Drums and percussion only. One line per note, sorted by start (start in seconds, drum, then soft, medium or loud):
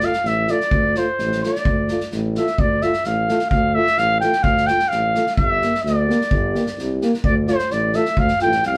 0.00 snare soft
0.13 snare soft
0.25 snare soft
0.47 snare soft
0.61 snare soft
0.71 kick loud
0.95 snare soft
1.19 snare soft
1.32 snare soft
1.44 snare soft
1.55 snare soft
1.65 kick medium
1.88 snare soft
2.00 snare soft
2.11 snare soft
2.35 snare soft
2.47 snare soft
2.58 kick loud
2.81 snare soft
2.93 snare soft
3.04 snare soft
3.29 snare soft
3.39 snare soft
3.51 kick medium
3.87 snare soft
3.97 snare soft
4.21 snare soft
4.33 snare soft
4.44 kick loud
4.57 snare soft
4.67 snare soft
4.79 snare soft
4.91 snare soft
5.15 snare soft
5.27 snare soft
5.37 kick loud
5.62 snare soft
5.75 snare soft
5.86 snare soft
6.10 snare soft
6.21 snare soft
6.31 kick loud
6.55 snare soft
6.66 snare soft
6.79 snare soft
7.02 snare soft
7.14 snare soft
7.24 kick loud
7.47 snare soft
7.59 snare soft
7.70 snare soft
7.93 snare soft
8.05 snare soft
8.17 kick medium
8.28 snare soft
8.39 snare soft
8.52 snare soft
8.63 snare soft